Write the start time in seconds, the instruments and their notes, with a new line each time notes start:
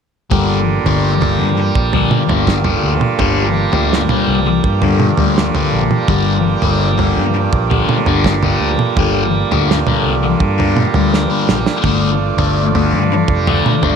0.31 fingered electric bass G1, distorted electric guitar G2 D3 G3, tanpura D3, transistor combo organ A#3 F4 G4 D5, kick, floor tom
0.84 fingered electric bass G1, distorted electric guitar G2 D3 G3, floor tom
0.96 tanpura G3
1.21 distorted electric guitar G2 D3 G3, floor tom
1.39 fingered electric bass G2
1.54 tanpura G3, muted distorted electric guitar stroke
1.75 fingered electric bass A#1, kick
1.93 distorted electric guitar G2 D3 G3, floor tom
2.11 tanpura G2, mid tom
2.28 fingered electric bass G1, distorted electric guitar G2 D3 G3, floor tom
2.47 kick, snare
2.64 distorted electric guitar G2 D3 G3, floor tom
2.77 tanpura D3
2.84 fingered electric bass D2
3.01 mid tom
3.19 fingered electric bass G1, distorted electric guitar G2 D3 G3, kick, floor tom
3.40 tanpura G3
3.73 fingered electric bass D2, distorted electric guitar G2 D3 G3, floor tom
3.93 snare
4.03 tanpura G3
4.09 distorted electric guitar G2 D3 G3, floor tom, mid tom
4.27 fingered electric bass C2
4.46 muted distorted electric guitar stroke
4.64 fingered electric bass G2, tanpura G2, kick
4.82 distorted electric guitar G2 D3 G3, floor tom
5.00 mid tom
5.17 fingered electric bass D2, distorted electric guitar G2 D3 G3, floor tom
5.25 tanpura D3
5.38 snare
5.55 distorted electric guitar G2 D3 G3, floor tom
5.72 fingered electric bass A#1
5.87 tanpura G3, mid tom
6.08 fingered electric bass G1, distorted electric guitar G2 D3 G3, kick, floor tom
6.49 tanpura G3
6.62 fingered electric bass G1, distorted electric guitar G2 D3 G3, floor tom
6.98 distorted electric guitar G2 D3 G3, floor tom
7.10 tanpura G2
7.16 fingered electric bass G2
7.34 muted distorted electric guitar stroke
7.52 fingered electric bass A#1, kick
7.70 distorted electric guitar G2 D3 G3, tanpura D3, floor tom
7.89 mid tom
8.06 fingered electric bass G1, distorted electric guitar G2 D3 G3, floor tom
8.24 kick, snare
8.35 tanpura G3
8.43 distorted electric guitar G2 D3 G3, floor tom
8.59 fingered electric bass D2
8.79 mid tom
8.97 fingered electric bass G1, distorted electric guitar G2 D3 G3, tanpura G3, kick, floor tom
9.51 fingered electric bass D2, distorted electric guitar G2 D3 G3, floor tom
9.57 tanpura G2
9.71 snare
9.87 distorted electric guitar G2 D3 G3, floor tom, mid tom
10.03 fingered electric bass C2
10.20 tanpura D3, muted distorted electric guitar stroke
10.40 fingered electric bass G2, kick
10.58 distorted electric guitar G2 D3 G3, floor tom
10.77 tanpura G3, mid tom
10.94 fingered electric bass D2, distorted electric guitar G2 D3 G3, floor tom
11.14 snare
11.31 distorted electric guitar G2 D3 G3
11.45 fingered electric bass A#1, tanpura G3, snare
11.66 snare
11.83 fingered electric bass G1, distorted electric guitar D3 A3 D4, transistor combo organ A3 D4, kick, floor tom
12.04 tanpura G2
12.37 fingered electric bass G1, distorted electric guitar D3 A3 D4, floor tom
12.65 tanpura D3
12.75 distorted electric guitar D3 A3 D4, floor tom
12.92 fingered electric bass G2
13.12 muted distorted electric guitar stroke
13.28 fingered electric bass F1, tanpura G3, kick
13.47 distorted electric guitar D3 A3 D4, floor tom
13.66 mid tom
13.82 fingered electric bass G1, distorted electric guitar D3 A3 D4, floor tom
13.90 tanpura G3